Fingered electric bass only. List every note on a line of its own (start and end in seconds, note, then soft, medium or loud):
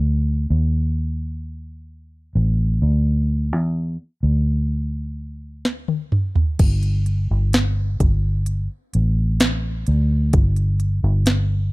0.00 0.47 D2 medium
0.50 2.32 D#2 medium
2.35 2.79 A1 medium
2.82 3.53 D2 medium
3.53 3.96 E2 medium
4.23 6.56 D2 medium
6.60 7.27 G1 loud
7.31 7.97 G1 medium
8.00 8.67 G1 medium
8.95 9.84 A1 medium
9.88 10.31 D2 medium
10.34 11.00 G1 medium
11.04 11.69 G1 medium